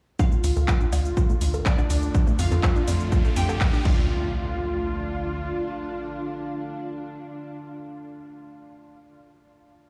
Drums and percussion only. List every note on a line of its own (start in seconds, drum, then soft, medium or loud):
0.19 kick loud
0.19 shaker soft
0.32 shaker soft
0.44 open hi-hat loud
0.44 shaker medium
0.56 shaker soft
0.68 kick loud
0.68 clap loud
0.68 shaker soft
0.81 shaker soft
0.93 open hi-hat loud
0.93 low woodblock soft
0.93 shaker medium
1.05 shaker soft
1.17 kick loud
1.17 shaker soft
1.29 shaker soft
1.41 open hi-hat loud
1.41 shaker medium
1.54 shaker soft
1.66 kick loud
1.66 clap loud
1.66 shaker soft
1.78 low woodblock soft
1.78 shaker soft
1.90 open hi-hat loud
1.90 shaker medium
2.03 shaker soft
2.15 kick loud
2.15 shaker soft
2.27 shaker soft
2.39 open hi-hat loud
2.39 shaker medium
2.51 shaker soft
2.63 kick loud
2.63 clap loud
2.63 low woodblock medium
2.63 shaker soft
2.76 shaker soft
2.88 open hi-hat loud
2.88 shaker medium
3.00 shaker soft
3.12 kick loud
3.12 shaker soft
3.25 shaker soft
3.36 open hi-hat loud
3.36 shaker medium
3.49 low woodblock soft
3.49 shaker soft
3.61 kick loud
3.61 clap loud
3.61 shaker soft
3.73 shaker soft
3.85 kick loud
3.85 crash medium